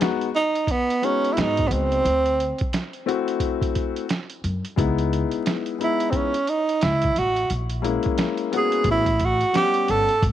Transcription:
0.00 0.26 G#3 medium
0.00 0.27 B3 medium
0.00 0.27 D#4 medium
0.00 0.27 F#4 medium
0.00 snare loud
0.00 closed hi-hat medium
0.21 closed hi-hat soft
0.35 0.72 D#4 medium
0.35 closed hi-hat medium
0.55 closed hi-hat medium
0.67 1.06 B3 medium
0.67 kick medium
0.67 closed hi-hat medium
0.90 closed hi-hat medium
1.02 1.99 G#3 medium
1.02 1.99 B3 medium
1.02 1.34 C#4 medium
1.02 2.00 D#4 medium
1.02 2.00 F#4 medium
1.02 closed hi-hat medium
1.24 closed hi-hat soft
1.33 1.42 E4 medium
1.37 1.65 G#2 medium
1.37 1.69 D#4 loud
1.37 snare loud
1.37 closed hi-hat medium
1.57 kick medium
1.57 closed hi-hat medium
1.67 1.99 C#2 medium
1.67 1.74 B3 soft
1.67 closed hi-hat medium
1.72 2.74 C4 medium
1.92 closed hi-hat soft
2.05 2.50 D2 loud
2.05 closed hi-hat medium
2.26 closed hi-hat medium
2.40 closed hi-hat medium
2.58 kick medium
2.58 closed hi-hat soft
2.73 snare medium
2.73 closed hi-hat medium
2.93 closed hi-hat soft
3.06 4.03 A3 medium
3.06 4.04 C4 medium
3.06 4.04 E4 medium
3.06 4.05 F#4 medium
3.06 closed hi-hat medium
3.28 closed hi-hat medium
3.40 kick medium
3.40 closed hi-hat medium
3.62 kick medium
3.62 closed hi-hat medium
3.75 kick medium
3.75 closed hi-hat medium
3.96 closed hi-hat soft
4.09 snare medium
4.09 closed hi-hat medium
4.30 closed hi-hat medium
4.44 4.61 F#2 medium
4.44 closed hi-hat medium
4.65 closed hi-hat soft
4.76 5.22 C#2 medium
4.76 5.74 G#3 medium
4.76 5.74 B3 medium
4.76 5.75 D#4 medium
4.76 5.75 E4 medium
4.76 kick loud
4.76 closed hi-hat medium
4.98 closed hi-hat medium
5.13 closed hi-hat medium
5.31 closed hi-hat soft
5.46 snare loud
5.46 closed hi-hat medium
5.66 closed hi-hat soft
5.78 6.30 G#3 medium
5.78 6.30 B3 medium
5.78 6.31 D#4 medium
5.78 6.31 E4 medium
5.78 closed hi-hat medium
5.84 6.12 E4 medium
6.00 closed hi-hat medium
6.10 6.17 C4 medium
6.10 kick medium
6.10 closed hi-hat medium
6.16 6.50 C#4 medium
6.34 closed hi-hat medium
6.47 6.85 D#4 medium
6.47 closed hi-hat medium
6.69 closed hi-hat soft
6.81 7.11 C#2 medium
6.81 7.20 E4 medium
6.81 snare loud
6.81 closed hi-hat medium
7.02 kick medium
7.02 closed hi-hat medium
7.16 7.45 A1 medium
7.16 7.51 F#4 medium
7.16 closed hi-hat medium
7.36 closed hi-hat soft
7.50 7.95 A#1 medium
7.50 closed hi-hat medium
7.70 closed hi-hat medium
7.82 8.50 G#3 medium
7.82 8.80 A#3 medium
7.82 8.52 C#4 medium
7.82 8.81 E4 medium
7.82 closed hi-hat medium
8.03 kick medium
8.03 closed hi-hat soft
8.18 snare loud
8.18 closed hi-hat medium
8.37 closed hi-hat soft
8.52 9.03 G#3 medium
8.52 9.03 B3 medium
8.52 9.03 C#4 medium
8.52 9.04 F#4 medium
8.52 closed hi-hat medium
8.57 8.87 G#4 medium
8.72 closed hi-hat medium
8.84 9.41 A1 loud
8.84 kick medium
8.84 closed hi-hat medium
8.91 9.26 E4 medium
9.06 kick loud
9.06 closed hi-hat medium
9.20 kick medium
9.20 closed hi-hat medium
9.25 9.56 F#4 medium
9.41 closed hi-hat soft
9.53 10.05 G3 medium
9.53 10.05 B3 soft
9.53 10.06 C#4 medium
9.53 9.91 G4 loud
9.53 10.06 F#5 medium
9.53 snare loud
9.53 closed hi-hat medium
9.74 closed hi-hat medium
9.88 10.06 G1 medium
9.88 10.24 A4 loud
9.88 closed hi-hat medium
10.09 closed hi-hat soft
10.22 10.32 G#1 loud
10.22 kick loud
10.22 closed hi-hat medium

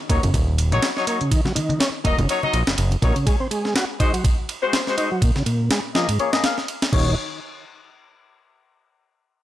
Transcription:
0.09 0.19 D#1 loud
0.09 0.21 F#3 medium
0.09 0.22 A#3 medium
0.09 0.21 D#4 medium
0.09 0.21 C#5 medium
0.09 kick loud
0.09 closed hi-hat medium
0.09 ride medium
0.23 0.31 F#1 medium
0.23 0.33 C#3 medium
0.23 closed hi-hat soft
0.23 ride soft
0.23 low conga medium
0.34 0.73 D#1 medium
0.34 kick loud
0.34 closed hi-hat soft
0.34 ride medium
0.34 muted conga medium
0.58 closed hi-hat medium
0.58 ride medium
0.72 0.80 A#1 medium
0.72 0.88 F#3 medium
0.72 0.88 D#4 medium
0.72 0.88 C#5 loud
0.72 closed hi-hat soft
0.72 muted conga medium
0.83 snare loud
0.83 closed hi-hat soft
0.83 ride medium
0.96 1.06 F#3 medium
0.96 1.05 D#4 medium
0.96 1.05 C#5 medium
0.96 snare soft
1.07 1.19 F#3 medium
1.07 1.19 A#3 medium
1.07 1.19 D#4 medium
1.07 1.19 C#5 medium
1.07 closed hi-hat medium
1.07 ride medium
1.21 1.31 C#3 medium
1.21 closed hi-hat soft
1.21 muted conga medium
1.31 1.41 D#3 medium
1.31 kick loud
1.31 closed hi-hat soft
1.31 ride medium
1.45 1.53 F#3 medium
1.45 snare soft
1.45 high conga medium
1.55 1.79 D#3 medium
1.55 closed hi-hat medium
1.55 ride medium
1.55 muted conga medium
1.69 closed hi-hat soft
1.69 high conga medium
1.80 1.90 C#4 medium
1.80 snare loud
1.80 closed hi-hat soft
1.80 ride medium
2.04 2.14 D#1 loud
2.04 2.17 F#3 medium
2.04 2.17 A#3 medium
2.04 2.17 D#4 medium
2.04 2.17 D#5 loud
2.04 kick loud
2.04 closed hi-hat medium
2.04 ride medium
2.04 muted conga medium
2.18 2.26 F#1 medium
2.18 2.28 C#3 medium
2.18 closed hi-hat soft
2.18 ride soft
2.18 low conga loud
2.29 2.41 F#3 medium
2.29 2.41 D#4 medium
2.29 2.41 C#5 loud
2.29 closed hi-hat soft
2.29 ride medium
2.43 2.59 F#3 medium
2.43 2.59 D#4 medium
2.43 2.59 D#5 loud
2.43 muted conga medium
2.53 2.63 A#1 loud
2.53 closed hi-hat medium
2.53 ride medium
2.67 2.76 F#1 soft
2.67 snare loud
2.67 closed hi-hat soft
2.78 2.96 F#1 medium
2.78 closed hi-hat soft
2.78 ride medium
2.91 ride soft
2.91 muted conga medium
3.02 3.12 A#1 medium
3.02 3.14 F#3 medium
3.02 3.15 A#3 medium
3.02 3.14 D#4 medium
3.02 3.14 C#5 medium
3.02 kick loud
3.02 closed hi-hat medium
3.02 ride medium
3.16 3.26 C#3 medium
3.16 closed hi-hat soft
3.16 ride soft
3.26 3.36 G#3 medium
3.26 kick loud
3.26 closed hi-hat soft
3.26 ride medium
3.40 3.48 C4 medium
3.51 3.74 G#3 medium
3.51 closed hi-hat medium
3.51 ride medium
3.65 snare soft
3.65 closed hi-hat soft
3.75 3.85 F#4 medium
3.75 snare loud
3.75 ride medium
4.00 4.12 G#3 medium
4.00 4.12 D#4 medium
4.00 4.12 F#4 medium
4.00 4.12 C5 medium
4.00 kick loud
4.00 closed hi-hat medium
4.00 ride medium
4.13 4.24 F#3 medium
4.13 closed hi-hat soft
4.13 ride soft
4.24 kick loud
4.24 ride medium
4.49 closed hi-hat medium
4.49 ride medium
4.62 4.78 G#3 medium
4.62 4.78 F#4 medium
4.62 4.78 C5 loud
4.62 closed hi-hat soft
4.73 snare loud
4.73 ride medium
4.87 4.96 G#3 medium
4.87 4.96 F#4 medium
4.87 4.96 C5 medium
4.87 snare soft
4.97 5.09 G#3 medium
4.97 5.10 D#4 medium
4.97 5.09 F#4 medium
4.97 5.09 C5 medium
4.97 closed hi-hat medium
4.97 ride medium
5.11 5.21 F#3 medium
5.11 closed hi-hat soft
5.22 5.31 A#2 medium
5.22 kick loud
5.22 ride medium
5.36 5.43 C#3 medium
5.36 snare soft
5.46 5.69 A#2 medium
5.46 closed hi-hat medium
5.46 ride medium
5.60 closed hi-hat soft
5.71 5.80 G#3 medium
5.71 snare loud
5.71 ride medium
5.95 6.07 F3 medium
5.95 6.07 A#3 medium
5.95 6.07 G#4 medium
5.95 6.07 D#5 loud
5.95 snare loud
6.08 6.19 G#2 medium
6.08 ride medium
6.19 6.31 A#3 medium
6.19 6.31 G#4 medium
6.19 6.31 C#5 loud
6.19 ride soft
6.33 6.42 A#3 medium
6.33 6.42 G#4 medium
6.33 6.42 D#5 loud
6.33 snare loud
6.44 6.56 A#3 medium
6.44 6.56 G#4 medium
6.44 6.56 F5 medium
6.44 snare loud
6.44 ride medium
6.58 snare soft
6.68 closed hi-hat soft
6.68 ride medium
6.82 snare medium
6.82 ride medium
6.92 7.15 D#1 loud
6.92 7.15 D#3 medium
6.92 7.11 F#3 medium
6.92 7.11 D#4 medium
6.92 7.11 C#5 loud
6.92 kick loud
6.92 crash medium

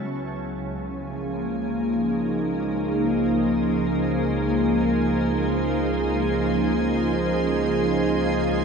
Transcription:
0.00 0.12 C#3 medium
0.00 0.11 B3 medium
0.00 0.10 E4 medium
0.00 0.11 C#5 medium
0.09 8.65 C#2 medium
0.09 8.65 C#3 medium
0.09 8.65 G#3 medium
0.63 8.65 G#4 medium
0.71 8.65 F3 medium
0.78 8.65 A#3 medium
1.58 8.65 D#4 medium
2.59 8.65 C5 medium

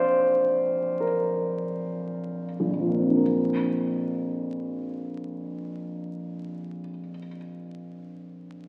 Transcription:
0.00 2.69 F2 soft
0.00 1.01 C5 medium
0.00 3.23 D5 medium
0.00 3.23 F5 medium
1.00 2.43 A#4 soft
2.60 6.79 A#1 soft
2.70 6.89 F2 soft
2.80 6.99 F3 soft
2.89 7.08 A#3 soft
2.99 7.18 C4 soft
3.08 7.27 D4 soft
3.16 7.35 A#4 soft

